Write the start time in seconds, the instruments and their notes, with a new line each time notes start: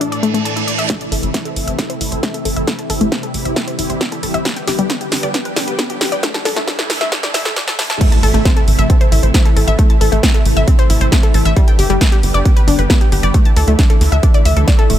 0.01 analog synth pad A2 E3 D4 A4, synth arpeggio sound D4, closed hi-hat, reverse cymbal
0.12 synth arpeggio sound D5, closed hi-hat
0.23 analog synth pad A2 E3 D4 A4, synth arpeggio sound A3, closed hi-hat
0.34 synth arpeggio sound A3, closed hi-hat
0.45 analog synth pad A2 E3 D4 A4, synth arpeggio sound A5, closed hi-hat
0.56 synth arpeggio sound E4, closed hi-hat
0.67 analog synth pad A2 E3 D4 A4, synth arpeggio sound D5, closed hi-hat
0.78 synth arpeggio sound E5, closed hi-hat
0.90 analog synth pad C3 E3 A3 E4, synth arpeggio sound A3, kick, snare, closed hi-hat, riser
1.01 synth arpeggio sound A5, closed hi-hat
1.12 analog synth bass A1, analog synth pad C3 E3 A3 E4, synth arpeggio sound A4, open hi-hat
1.23 analog synth bass A1, synth arpeggio sound A3, closed hi-hat
1.34 analog synth pad C3 E3 A3 E4, synth arpeggio sound C4, kick, snare, closed hi-hat
1.45 synth arpeggio sound A4, closed hi-hat
1.56 analog synth bass A1, analog synth pad C3 E3 A3 E4, open hi-hat
1.68 analog synth bass A1, synth arpeggio sound E5, closed hi-hat
1.79 analog synth pad C3 E3 A3 E4, synth arpeggio sound C4, kick, snare, closed hi-hat
1.90 synth arpeggio sound C5, closed hi-hat
2.01 analog synth bass A1, analog synth pad C3 E3 A3 E4, synth arpeggio sound E4, open hi-hat
2.12 analog synth bass A1, synth arpeggio sound C5, closed hi-hat
2.23 analog synth pad C3 E3 A3 E4, synth arpeggio sound C4, kick, snare, closed hi-hat
2.34 synth arpeggio sound A4, closed hi-hat
2.45 analog synth bass A1, analog synth pad C3 E3 A3 E4, synth arpeggio sound A4, open hi-hat
2.56 analog synth bass A1, synth arpeggio sound E5, closed hi-hat
2.67 analog synth pad C3 E3 G3 E4, synth arpeggio sound A3, kick, snare, closed hi-hat
2.79 synth arpeggio sound A5, closed hi-hat
2.90 analog synth bass A1, analog synth pad C3 E3 G3 E4, synth arpeggio sound A4, open hi-hat
3.01 analog synth bass A1, synth arpeggio sound A3, closed hi-hat
3.12 analog synth pad C3 E3 G3 E4, synth arpeggio sound C4, kick, snare, closed hi-hat
3.23 synth arpeggio sound A4, closed hi-hat
3.34 analog synth bass A1, analog synth pad C3 E3 G3 E4, open hi-hat
3.45 analog synth bass A1, synth arpeggio sound E5, closed hi-hat
3.56 analog synth pad C3 E3 G3 E4, synth arpeggio sound C4, kick, snare, closed hi-hat
3.68 synth arpeggio sound C5, closed hi-hat
3.79 analog synth bass A1, analog synth pad C3 E3 G3 E4, synth arpeggio sound E4, open hi-hat
3.90 analog synth bass A1, synth arpeggio sound C5, closed hi-hat
4.01 analog synth pad C3 E3 G3 E4, synth arpeggio sound C4, kick, snare, closed hi-hat
4.12 synth arpeggio sound A4, closed hi-hat
4.23 analog synth bass A1, analog synth pad C3 E3 G3 E4, synth arpeggio sound A4, open hi-hat
4.34 analog synth bass A1, synth arpeggio sound E5, closed hi-hat
4.45 analog synth pad D3 G3 B3 G4, synth arpeggio sound G3, kick, snare, closed hi-hat
4.56 synth arpeggio sound G5, closed hi-hat
4.67 analog synth bass G1, analog synth pad D3 G3 B3 G4, synth arpeggio sound G4, snare, open hi-hat
4.79 analog synth bass G1, synth arpeggio sound G3, closed hi-hat
4.90 analog synth pad D3 G3 B3 G4, synth arpeggio sound B3, kick, snare, closed hi-hat
5.01 synth arpeggio sound G4, closed hi-hat
5.12 analog synth bass G1, analog synth pad D3 G3 B3 G4, snare, open hi-hat
5.23 analog synth bass G1, synth arpeggio sound D5, closed hi-hat
5.34 analog synth pad D3 G3 B3 G4, synth arpeggio sound B3, kick, snare, closed hi-hat
5.45 synth arpeggio sound B4, closed hi-hat
5.56 analog synth bass G1, analog synth pad D3 G3 B3 G4, synth arpeggio sound D4, snare, open hi-hat
5.68 analog synth bass G1, synth arpeggio sound B4, closed hi-hat
5.78 analog synth pad D3 G3 B3 G4, synth arpeggio sound B3, kick, snare, closed hi-hat
5.90 synth arpeggio sound G4, closed hi-hat
6.01 analog synth bass G1, analog synth pad D3 G3 B3 G4, synth arpeggio sound G4, snare, open hi-hat
6.12 analog synth bass G1, synth arpeggio sound D5, closed hi-hat
6.23 analog synth pad D3 E3 A3 E4, synth arpeggio sound A3, kick, snare, closed hi-hat, noise sweep
6.34 synth arpeggio sound A5, snare, closed hi-hat
6.45 analog synth bass D2, analog synth pad D3 E3 A3 E4, synth arpeggio sound A4, snare, open hi-hat
6.56 analog synth bass D2, synth arpeggio sound A3, snare, closed hi-hat
6.67 analog synth pad D3 E3 A3 E4, synth arpeggio sound D4, kick, snare, closed hi-hat
6.79 synth arpeggio sound A4, snare, closed hi-hat
6.90 analog synth bass D2, analog synth pad D3 E3 A3 E4, snare, open hi-hat
7.01 analog synth bass D2, synth arpeggio sound E5, snare, closed hi-hat
7.12 analog synth pad D3 E3 A3 E4, synth arpeggio sound D4, kick, snare, closed hi-hat
7.23 synth arpeggio sound D5, snare, closed hi-hat
7.34 analog synth bass D2, analog synth pad D3 E3 A3 E4, synth arpeggio sound E5, snare, open hi-hat
7.45 analog synth bass D2, synth arpeggio sound A4, snare, closed hi-hat
7.56 analog synth pad D3 E3 A3 E4, synth arpeggio sound D5, kick, snare, closed hi-hat
7.68 synth arpeggio sound A4, snare, closed hi-hat
7.79 analog synth bass D2, analog synth pad D3 E3 A3 E4, synth arpeggio sound A3, snare, open hi-hat
7.90 analog synth bass D2, synth arpeggio sound A5, snare, closed hi-hat
8.01 analog synth pad C3 E3 A3 E4, synth arpeggio sound A3, kick, closed hi-hat, crash, impact
8.12 synth arpeggio sound A5, closed hi-hat
8.23 analog synth bass A1, analog synth pad C3 E3 A3 E4, synth arpeggio sound A4, open hi-hat
8.34 analog synth bass A1, synth arpeggio sound A3, closed hi-hat
8.45 analog synth pad C3 E3 A3 E4, synth arpeggio sound C4, kick, snare, closed hi-hat
8.56 synth arpeggio sound A4, closed hi-hat
8.68 analog synth bass A1, analog synth pad C3 E3 A3 E4, open hi-hat
8.79 analog synth bass A1, synth arpeggio sound E5, closed hi-hat
8.90 analog synth pad C3 E3 A3 E4, synth arpeggio sound C4, kick, closed hi-hat
9.01 synth arpeggio sound C5, closed hi-hat
9.12 analog synth bass A1, analog synth pad C3 E3 A3 E4, synth arpeggio sound E4, open hi-hat
9.23 analog synth bass A1, synth arpeggio sound C5, closed hi-hat
9.34 analog synth pad C3 E3 A3 E4, synth arpeggio sound C4, kick, snare, closed hi-hat
9.45 synth arpeggio sound A4, closed hi-hat
9.56 analog synth bass A1, analog synth pad C3 E3 A3 E4, synth arpeggio sound A4, open hi-hat
9.68 analog synth bass A1, synth arpeggio sound E5, closed hi-hat
9.79 analog synth pad C3 E3 A3 E4, synth arpeggio sound A3, kick, closed hi-hat
9.90 synth arpeggio sound A5, closed hi-hat
10.01 analog synth bass A1, analog synth pad C3 E3 A3 E4, synth arpeggio sound A4, open hi-hat
10.12 analog synth bass A1, synth arpeggio sound A3, closed hi-hat
10.23 analog synth pad C3 E3 A3 E4, synth arpeggio sound C4, kick, snare, closed hi-hat
10.34 synth arpeggio sound A4, closed hi-hat
10.45 analog synth bass A1, analog synth pad C3 E3 A3 E4, open hi-hat
10.57 analog synth bass A1, synth arpeggio sound E5, closed hi-hat
10.67 analog synth pad C3 E3 A3 E4, synth arpeggio sound C4, kick, closed hi-hat
10.79 synth arpeggio sound C5, closed hi-hat
10.90 analog synth bass A1, analog synth pad C3 E3 A3 E4, synth arpeggio sound E4, open hi-hat
11.01 analog synth bass A1, synth arpeggio sound C5, closed hi-hat
11.12 analog synth pad C3 E3 A3 E4, synth arpeggio sound C4, kick, snare, closed hi-hat
11.23 synth arpeggio sound A4, closed hi-hat
11.34 analog synth bass A1, analog synth pad C3 E3 A3 E4, synth arpeggio sound A4, open hi-hat
11.45 analog synth bass A1, synth arpeggio sound E5, closed hi-hat
11.56 analog synth pad D3 G3 B3 G4, synth arpeggio sound G3, kick, closed hi-hat
11.68 synth arpeggio sound G5, closed hi-hat
11.79 analog synth bass G1, analog synth pad D3 G3 B3 G4, synth arpeggio sound G4, open hi-hat
11.90 analog synth bass G1, synth arpeggio sound G3, closed hi-hat
12.01 analog synth pad D3 G3 B3 G4, synth arpeggio sound B3, kick, snare, closed hi-hat
12.12 synth arpeggio sound G4, closed hi-hat
12.23 analog synth bass G1, analog synth pad D3 G3 B3 G4, open hi-hat
12.34 analog synth bass G1, synth arpeggio sound D5, closed hi-hat
12.45 analog synth pad D3 G3 B3 G4, synth arpeggio sound B3, kick, closed hi-hat
12.56 synth arpeggio sound B4, closed hi-hat
12.68 analog synth bass G1, analog synth pad D3 G3 B3 G4, synth arpeggio sound D4, open hi-hat
12.79 analog synth bass G1, synth arpeggio sound B4, closed hi-hat
12.90 analog synth pad D3 G3 B3 G4, synth arpeggio sound B3, kick, snare, closed hi-hat
13.01 synth arpeggio sound G4, closed hi-hat
13.12 analog synth bass G1, analog synth pad D3 G3 B3 G4, synth arpeggio sound G4, open hi-hat
13.23 analog synth bass G1, synth arpeggio sound D5, closed hi-hat
13.34 analog synth pad D3 E3 A3 E4, synth arpeggio sound A3, kick, closed hi-hat
13.45 synth arpeggio sound A5, closed hi-hat
13.56 analog synth bass D2, analog synth pad D3 E3 A3 E4, synth arpeggio sound A4, open hi-hat
13.68 analog synth bass D2, synth arpeggio sound A3, closed hi-hat
13.79 analog synth pad D3 E3 A3 E4, synth arpeggio sound D4, kick, snare, closed hi-hat
13.90 synth arpeggio sound A4, closed hi-hat
14.01 analog synth bass D2, analog synth pad D3 E3 A3 E4, snare, open hi-hat
14.12 analog synth bass D2, synth arpeggio sound E5, closed hi-hat
14.23 analog synth pad D3 E3 A3 E4, synth arpeggio sound D4, kick, closed hi-hat
14.34 synth arpeggio sound D5, closed hi-hat
14.45 analog synth bass D2, analog synth pad D3 E3 A3 E4, synth arpeggio sound E5, open hi-hat
14.57 analog synth bass D2, synth arpeggio sound A4, closed hi-hat
14.67 analog synth pad D3 E3 A3 E4, synth arpeggio sound D5, kick, snare, closed hi-hat
14.79 synth arpeggio sound A4, closed hi-hat
14.90 analog synth bass D1, analog synth pad D3 E3 A3 E4, synth arpeggio sound A3, open hi-hat